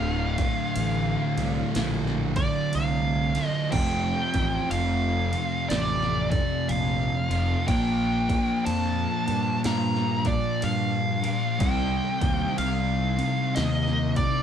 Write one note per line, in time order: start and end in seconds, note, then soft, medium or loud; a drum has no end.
0.00 0.39 D1 loud
0.00 3.31 D2 loud
0.00 3.32 A2 medium
0.00 3.32 D3 loud
0.00 3.32 A3 loud
0.00 3.33 F4 loud
0.00 2.46 F5 loud
0.38 kick medium
0.38 ride medium
0.76 1.15 A1 medium
0.76 ride loud
1.37 1.61 C2 medium
1.37 3.72 D2 medium
1.37 3.71 A2 medium
1.37 3.71 D3 medium
1.37 ride medium
1.75 2.38 A#1 loud
1.75 snare loud
1.75 ride loud
2.07 snare soft
2.36 2.75 D5 medium
2.36 kick medium
2.36 ride medium
2.73 3.37 C2 loud
2.73 3.46 F5 medium
2.73 ride loud
3.35 3.72 D2 medium
3.35 3.72 A2 medium
3.35 3.71 D3 medium
3.35 3.71 A3 medium
3.35 3.75 F4 medium
3.35 ride medium
3.46 3.71 D#5 medium
3.72 4.12 F1 loud
3.72 7.26 F2 loud
3.72 7.27 C3 loud
3.72 7.27 F3 loud
3.72 7.27 A3 loud
3.72 7.27 C4 medium
3.72 7.28 F4 loud
3.72 4.70 G5 loud
3.72 kick loud
3.72 crash loud
4.34 4.58 A1 medium
4.34 kick medium
4.34 ride medium
4.71 5.34 F1 loud
4.71 5.73 F5 loud
4.71 ride loud
5.33 7.67 F2 medium
5.33 7.66 C3 medium
5.33 7.65 F3 medium
5.33 ride medium
5.69 6.33 A1 loud
5.69 6.30 D5 loud
5.69 snare loud
5.69 ride loud
6.02 snare soft
6.31 6.70 D5 medium
6.31 kick medium
6.31 ride medium
6.68 7.08 A#1 medium
6.68 7.67 F5 loud
6.68 ride medium
7.30 7.54 F1 medium
7.30 7.66 F2 medium
7.30 7.66 C3 medium
7.30 7.66 F3 medium
7.30 7.66 A3 medium
7.30 7.65 C4 medium
7.30 7.65 F4 medium
7.30 ride medium
7.67 8.30 A#1 loud
7.67 11.19 A#2 medium
7.67 11.19 F3 loud
7.67 11.20 A#3 loud
7.67 11.20 D4 loud
7.67 11.20 F4 loud
7.67 11.21 A#4 loud
7.67 8.69 G5 loud
7.67 kick loud
7.67 ride loud
8.29 kick loud
8.29 ride medium
8.65 9.05 F2 loud
8.65 9.60 A5 loud
8.65 ride loud
9.27 9.51 G2 medium
9.27 11.59 A#2 medium
9.27 11.59 F3 medium
9.27 11.58 A#3 medium
9.27 ride medium
9.64 10.26 G2 loud
9.64 10.28 A#5 loud
9.64 snare loud
9.64 ride loud
9.96 snare soft
10.25 10.64 D5 loud
10.25 kick medium
10.25 ride medium
10.62 11.24 G2 loud
10.62 11.61 F5 loud
10.62 ride loud
11.22 11.59 A#2 medium
11.22 11.59 F3 medium
11.22 11.58 A#3 medium
11.22 11.58 D4 medium
11.22 11.58 F4 medium
11.22 11.57 A#4 loud
11.22 ride medium
11.59 11.99 C2 loud
11.59 14.43 C3 loud
11.59 14.43 G3 loud
11.59 14.43 C4 loud
11.59 14.43 D#4 loud
11.59 14.43 G4 loud
11.59 14.43 C5 loud
11.59 12.58 G5 loud
11.59 kick loud
11.59 ride loud
12.21 12.44 D#2 medium
12.21 kick loud
12.21 ride medium
12.58 13.20 C2 loud
12.58 13.59 F5 loud
12.58 ride loud
13.18 14.43 C3 medium
13.18 14.43 G3 medium
13.18 14.43 C4 medium
13.18 ride medium
13.55 14.18 D#2 loud
13.55 14.16 D#5 loud
13.55 snare loud
13.55 ride loud
13.88 snare soft
14.16 14.43 D5 loud
14.16 kick medium
14.16 ride medium